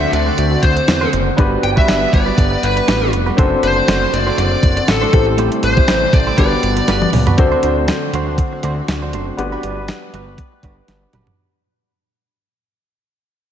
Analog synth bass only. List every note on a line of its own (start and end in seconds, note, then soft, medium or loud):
0.13 0.31 D2 loud
0.38 0.56 D2 loud
0.63 0.81 D2 loud
0.88 1.06 E2 medium
1.13 1.31 F#1 loud
1.38 1.56 G1 loud
1.63 1.81 G1 loud
1.88 2.06 G1 loud
2.13 2.31 G1 loud
2.38 2.56 G1 loud
2.63 2.81 G1 medium
2.88 3.14 A1 loud
3.13 3.31 F1 loud
3.38 3.56 F#1 loud
3.63 3.81 F#1 loud
3.88 4.06 F#1 loud
4.13 4.31 F#1 loud
4.38 4.56 F#1 loud
4.63 4.81 F#1 loud
4.88 5.06 A1 medium
5.13 5.49 A1 loud
5.63 5.81 A1 loud
5.88 6.06 A1 loud
6.13 6.31 A1 loud
6.38 6.56 G1 loud
6.63 6.81 G1 loud
6.88 7.06 G1 medium
7.13 7.31 C#2 loud
7.38 7.56 D2 loud
7.63 7.91 D2 loud
8.13 8.41 D2 loud
8.63 8.81 D2 loud
8.88 9.15 D2 loud
9.13 9.31 F#1 medium
9.38 9.56 G1 loud
9.63 9.91 G1 medium
10.13 10.41 G1 loud
10.63 10.81 G1 loud
10.88 11.06 G1 loud
11.13 11.31 F#1 medium